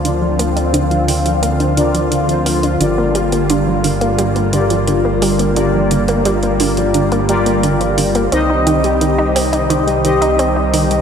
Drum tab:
HH |x-xxxxoxxxxxxxox|x-xxx-oxxxxxx-ox|x-xxxxoxxxxxxxox|x-xxx-oxxxxxx-ox|